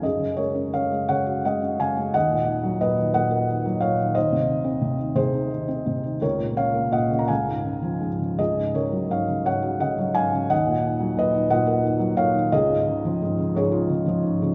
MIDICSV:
0, 0, Header, 1, 2, 480
1, 0, Start_track
1, 0, Key_signature, 6, "major"
1, 0, Tempo, 700935
1, 32, Time_signature, 6, 3, 24, 8
1, 1472, Tempo, 671892
1, 3872, Tempo, 719424
1, 6752, Tempo, 681044
1, 10080, End_track
2, 0, Start_track
2, 0, Title_t, "Felt piano"
2, 0, Program_c, 0, 0
2, 0, Control_c, 0, 64, 127
2, 14, Note_on_c, 0, 42, 47
2, 22, Note_on_c, 0, 75, 70
2, 35, Note_on_c, 0, 68, 60
2, 40, Control_c, 0, 64, 0
2, 131, Note_on_c, 0, 49, 39
2, 148, Control_c, 0, 64, 127
2, 251, Note_on_c, 0, 73, 71
2, 256, Note_on_c, 0, 56, 39
2, 258, Note_off_c, 0, 68, 0
2, 262, Note_on_c, 0, 70, 52
2, 276, Note_off_c, 0, 75, 0
2, 374, Note_on_c, 0, 61, 42
2, 487, Note_off_c, 0, 73, 0
2, 488, Note_off_c, 0, 49, 0
2, 493, Note_off_c, 0, 70, 0
2, 498, Note_on_c, 0, 49, 42
2, 504, Note_on_c, 0, 77, 75
2, 512, Note_on_c, 0, 73, 55
2, 618, Note_off_c, 0, 56, 0
2, 628, Note_on_c, 0, 56, 41
2, 738, Note_off_c, 0, 49, 0
2, 738, Note_off_c, 0, 73, 0
2, 744, Note_on_c, 0, 78, 82
2, 748, Note_on_c, 0, 49, 53
2, 749, Note_on_c, 0, 73, 63
2, 762, Note_off_c, 0, 77, 0
2, 866, Note_on_c, 0, 66, 42
2, 978, Note_off_c, 0, 56, 0
2, 979, Note_off_c, 0, 73, 0
2, 984, Note_off_c, 0, 78, 0
2, 988, Note_on_c, 0, 56, 47
2, 994, Note_on_c, 0, 78, 70
2, 1002, Note_on_c, 0, 75, 58
2, 1098, Note_off_c, 0, 61, 0
2, 1108, Note_on_c, 0, 61, 45
2, 1216, Note_off_c, 0, 49, 0
2, 1219, Note_off_c, 0, 78, 0
2, 1223, Note_off_c, 0, 75, 0
2, 1226, Note_on_c, 0, 49, 44
2, 1231, Note_on_c, 0, 80, 77
2, 1234, Note_on_c, 0, 77, 66
2, 1338, Note_off_c, 0, 56, 0
2, 1348, Note_on_c, 0, 56, 44
2, 1435, Note_off_c, 0, 42, 0
2, 1446, Note_off_c, 0, 66, 0
2, 1453, Note_off_c, 0, 77, 0
2, 1454, Note_off_c, 0, 61, 0
2, 1458, Note_off_c, 0, 49, 0
2, 1464, Note_off_c, 0, 56, 0
2, 1465, Note_on_c, 0, 78, 86
2, 1466, Note_on_c, 0, 39, 56
2, 1475, Note_off_c, 0, 80, 0
2, 1477, Note_on_c, 0, 75, 67
2, 1482, Control_c, 0, 64, 0
2, 1584, Note_on_c, 0, 46, 42
2, 1610, Control_c, 0, 64, 127
2, 1700, Note_on_c, 0, 51, 42
2, 1818, Note_on_c, 0, 54, 49
2, 1924, Note_off_c, 0, 75, 0
2, 1930, Note_off_c, 0, 46, 0
2, 1940, Note_on_c, 0, 46, 48
2, 1944, Note_on_c, 0, 71, 60
2, 1944, Note_on_c, 0, 75, 76
2, 1961, Note_off_c, 0, 78, 0
2, 2049, Note_off_c, 0, 51, 0
2, 2059, Note_on_c, 0, 51, 46
2, 2168, Note_off_c, 0, 75, 0
2, 2169, Note_off_c, 0, 71, 0
2, 2175, Note_off_c, 0, 46, 0
2, 2178, Note_on_c, 0, 75, 68
2, 2181, Note_on_c, 0, 78, 85
2, 2186, Note_on_c, 0, 46, 58
2, 2299, Note_on_c, 0, 70, 45
2, 2416, Note_off_c, 0, 51, 0
2, 2426, Note_on_c, 0, 51, 49
2, 2536, Note_off_c, 0, 54, 0
2, 2547, Note_on_c, 0, 54, 50
2, 2631, Note_off_c, 0, 75, 0
2, 2633, Note_off_c, 0, 78, 0
2, 2655, Note_off_c, 0, 46, 0
2, 2655, Note_on_c, 0, 77, 79
2, 2663, Note_on_c, 0, 73, 67
2, 2665, Note_on_c, 0, 46, 47
2, 2776, Note_off_c, 0, 51, 0
2, 2786, Note_on_c, 0, 51, 48
2, 2872, Note_off_c, 0, 39, 0
2, 2881, Note_off_c, 0, 70, 0
2, 2885, Note_off_c, 0, 73, 0
2, 2893, Note_off_c, 0, 54, 0
2, 2896, Note_off_c, 0, 46, 0
2, 2899, Note_on_c, 0, 75, 84
2, 2901, Note_off_c, 0, 51, 0
2, 2902, Note_on_c, 0, 72, 66
2, 2905, Note_off_c, 0, 77, 0
2, 2906, Note_on_c, 0, 39, 60
2, 2912, Control_c, 0, 64, 0
2, 3025, Note_on_c, 0, 48, 46
2, 3035, Control_c, 0, 64, 127
2, 3139, Note_on_c, 0, 51, 49
2, 3254, Note_on_c, 0, 60, 50
2, 3365, Note_off_c, 0, 48, 0
2, 3376, Note_on_c, 0, 48, 52
2, 3489, Note_off_c, 0, 51, 0
2, 3500, Note_on_c, 0, 51, 49
2, 3596, Note_off_c, 0, 72, 0
2, 3607, Note_off_c, 0, 48, 0
2, 3618, Note_on_c, 0, 48, 59
2, 3620, Note_on_c, 0, 72, 83
2, 3623, Note_on_c, 0, 68, 64
2, 3645, Note_off_c, 0, 75, 0
2, 3746, Note_on_c, 0, 63, 46
2, 3859, Note_off_c, 0, 51, 0
2, 3870, Note_on_c, 0, 51, 53
2, 3977, Note_off_c, 0, 60, 0
2, 3987, Note_on_c, 0, 60, 49
2, 4099, Note_off_c, 0, 48, 0
2, 4109, Note_on_c, 0, 48, 51
2, 4213, Note_off_c, 0, 51, 0
2, 4223, Note_on_c, 0, 51, 48
2, 4310, Note_off_c, 0, 68, 0
2, 4313, Note_off_c, 0, 39, 0
2, 4320, Note_off_c, 0, 63, 0
2, 4328, Note_off_c, 0, 60, 0
2, 4334, Note_off_c, 0, 48, 0
2, 4336, Note_off_c, 0, 51, 0
2, 4340, Note_on_c, 0, 37, 57
2, 4344, Note_on_c, 0, 70, 64
2, 4348, Control_c, 0, 64, 0
2, 4348, Note_on_c, 0, 73, 74
2, 4357, Note_off_c, 0, 72, 0
2, 4450, Control_c, 0, 64, 127
2, 4455, Note_on_c, 0, 46, 44
2, 4563, Note_off_c, 0, 70, 0
2, 4565, Note_off_c, 0, 73, 0
2, 4576, Note_on_c, 0, 49, 46
2, 4580, Note_on_c, 0, 73, 62
2, 4580, Note_on_c, 0, 77, 82
2, 4693, Note_on_c, 0, 58, 48
2, 4800, Note_off_c, 0, 46, 0
2, 4803, Note_off_c, 0, 73, 0
2, 4810, Note_on_c, 0, 46, 49
2, 4814, Note_on_c, 0, 75, 56
2, 4817, Note_on_c, 0, 78, 69
2, 4827, Note_off_c, 0, 77, 0
2, 4930, Note_off_c, 0, 49, 0
2, 4940, Note_on_c, 0, 49, 45
2, 4993, Note_on_c, 0, 82, 60
2, 4999, Note_off_c, 0, 75, 0
2, 5000, Note_off_c, 0, 78, 0
2, 5042, Note_off_c, 0, 37, 0
2, 5050, Note_off_c, 0, 58, 0
2, 5051, Note_off_c, 0, 46, 0
2, 5051, Note_on_c, 0, 77, 64
2, 5052, Note_off_c, 0, 82, 0
2, 5054, Note_on_c, 0, 80, 80
2, 5059, Note_off_c, 0, 49, 0
2, 5066, Note_on_c, 0, 37, 56
2, 5073, Control_c, 0, 64, 0
2, 5179, Control_c, 0, 64, 127
2, 5184, Note_on_c, 0, 44, 40
2, 5302, Note_on_c, 0, 49, 47
2, 5417, Note_on_c, 0, 53, 45
2, 5526, Note_off_c, 0, 44, 0
2, 5536, Note_on_c, 0, 44, 42
2, 5580, Note_off_c, 0, 77, 0
2, 5582, Note_off_c, 0, 80, 0
2, 5651, Note_off_c, 0, 49, 0
2, 5661, Note_on_c, 0, 49, 40
2, 5774, Note_off_c, 0, 37, 0
2, 5776, Note_off_c, 0, 53, 0
2, 5779, Note_off_c, 0, 44, 0
2, 5784, Note_off_c, 0, 49, 0
2, 5786, Note_on_c, 0, 37, 50
2, 5792, Note_on_c, 0, 68, 54
2, 5792, Note_on_c, 0, 75, 71
2, 5804, Control_c, 0, 64, 0
2, 5907, Note_on_c, 0, 44, 38
2, 5916, Control_c, 0, 64, 127
2, 6017, Note_off_c, 0, 68, 0
2, 6029, Note_on_c, 0, 49, 41
2, 6032, Note_on_c, 0, 70, 54
2, 6035, Note_on_c, 0, 73, 68
2, 6041, Note_off_c, 0, 75, 0
2, 6148, Note_on_c, 0, 54, 44
2, 6257, Note_off_c, 0, 70, 0
2, 6258, Note_off_c, 0, 44, 0
2, 6258, Note_off_c, 0, 73, 0
2, 6268, Note_on_c, 0, 44, 43
2, 6274, Note_on_c, 0, 73, 56
2, 6276, Note_on_c, 0, 77, 70
2, 6376, Note_off_c, 0, 49, 0
2, 6386, Note_on_c, 0, 49, 45
2, 6495, Note_off_c, 0, 73, 0
2, 6498, Note_off_c, 0, 44, 0
2, 6505, Note_on_c, 0, 73, 59
2, 6508, Note_on_c, 0, 44, 58
2, 6509, Note_on_c, 0, 78, 82
2, 6521, Note_off_c, 0, 77, 0
2, 6618, Note_on_c, 0, 66, 45
2, 6727, Note_off_c, 0, 78, 0
2, 6729, Note_off_c, 0, 73, 0
2, 6734, Note_off_c, 0, 49, 0
2, 6737, Note_on_c, 0, 75, 55
2, 6737, Note_on_c, 0, 78, 73
2, 6744, Note_on_c, 0, 49, 51
2, 6852, Note_off_c, 0, 54, 0
2, 6863, Note_on_c, 0, 54, 50
2, 6971, Note_off_c, 0, 75, 0
2, 6971, Note_off_c, 0, 78, 0
2, 6977, Note_on_c, 0, 80, 87
2, 6978, Note_off_c, 0, 44, 0
2, 6982, Note_on_c, 0, 77, 65
2, 6988, Note_on_c, 0, 44, 47
2, 7094, Note_off_c, 0, 49, 0
2, 7104, Note_on_c, 0, 49, 49
2, 7205, Note_off_c, 0, 37, 0
2, 7212, Note_off_c, 0, 66, 0
2, 7213, Note_off_c, 0, 77, 0
2, 7221, Note_off_c, 0, 54, 0
2, 7223, Note_on_c, 0, 39, 58
2, 7226, Note_on_c, 0, 75, 67
2, 7227, Note_off_c, 0, 44, 0
2, 7227, Note_off_c, 0, 49, 0
2, 7227, Note_on_c, 0, 78, 86
2, 7236, Note_off_c, 0, 80, 0
2, 7248, Control_c, 0, 64, 0
2, 7345, Note_on_c, 0, 46, 48
2, 7382, Control_c, 0, 64, 127
2, 7463, Note_on_c, 0, 51, 51
2, 7582, Note_on_c, 0, 54, 52
2, 7677, Note_off_c, 0, 75, 0
2, 7688, Note_off_c, 0, 46, 0
2, 7698, Note_on_c, 0, 46, 57
2, 7708, Note_on_c, 0, 71, 61
2, 7711, Note_on_c, 0, 75, 83
2, 7720, Note_off_c, 0, 78, 0
2, 7815, Note_off_c, 0, 51, 0
2, 7825, Note_on_c, 0, 51, 52
2, 7923, Note_off_c, 0, 46, 0
2, 7925, Note_off_c, 0, 71, 0
2, 7930, Note_off_c, 0, 75, 0
2, 7933, Note_on_c, 0, 46, 68
2, 7935, Note_on_c, 0, 78, 86
2, 7940, Note_on_c, 0, 75, 72
2, 8049, Note_on_c, 0, 70, 54
2, 8154, Note_off_c, 0, 51, 0
2, 8165, Note_on_c, 0, 51, 58
2, 8268, Note_off_c, 0, 54, 0
2, 8279, Note_on_c, 0, 54, 56
2, 8384, Note_off_c, 0, 75, 0
2, 8391, Note_off_c, 0, 46, 0
2, 8402, Note_on_c, 0, 46, 56
2, 8402, Note_on_c, 0, 73, 71
2, 8405, Note_on_c, 0, 77, 93
2, 8424, Note_off_c, 0, 78, 0
2, 8515, Note_off_c, 0, 51, 0
2, 8525, Note_on_c, 0, 51, 57
2, 8622, Note_off_c, 0, 39, 0
2, 8635, Note_off_c, 0, 70, 0
2, 8635, Note_off_c, 0, 73, 0
2, 8636, Note_off_c, 0, 77, 0
2, 8639, Note_off_c, 0, 54, 0
2, 8644, Note_off_c, 0, 46, 0
2, 8649, Note_off_c, 0, 51, 0
2, 8653, Note_on_c, 0, 75, 90
2, 8654, Note_on_c, 0, 37, 66
2, 8663, Note_on_c, 0, 68, 73
2, 8666, Control_c, 0, 64, 0
2, 8776, Note_on_c, 0, 44, 56
2, 8793, Control_c, 0, 64, 127
2, 8899, Note_on_c, 0, 49, 59
2, 9023, Note_on_c, 0, 53, 60
2, 9133, Note_off_c, 0, 44, 0
2, 9144, Note_on_c, 0, 44, 64
2, 9250, Note_off_c, 0, 49, 0
2, 9261, Note_on_c, 0, 49, 57
2, 9361, Note_off_c, 0, 68, 0
2, 9366, Note_off_c, 0, 44, 0
2, 9376, Note_on_c, 0, 44, 72
2, 9387, Note_on_c, 0, 73, 86
2, 9396, Note_on_c, 0, 68, 76
2, 9406, Note_off_c, 0, 75, 0
2, 9495, Note_on_c, 0, 65, 56
2, 9609, Note_off_c, 0, 49, 0
2, 9620, Note_on_c, 0, 49, 62
2, 9727, Note_off_c, 0, 53, 0
2, 9738, Note_on_c, 0, 53, 61
2, 9845, Note_off_c, 0, 44, 0
2, 9856, Note_on_c, 0, 44, 55
2, 9979, Note_off_c, 0, 49, 0
2, 9989, Note_on_c, 0, 49, 61
2, 10080, Note_off_c, 0, 37, 0
2, 10080, Note_off_c, 0, 44, 0
2, 10080, Note_off_c, 0, 49, 0
2, 10080, Note_off_c, 0, 53, 0
2, 10080, Note_off_c, 0, 65, 0
2, 10080, Note_off_c, 0, 68, 0
2, 10080, Note_off_c, 0, 73, 0
2, 10080, End_track
0, 0, End_of_file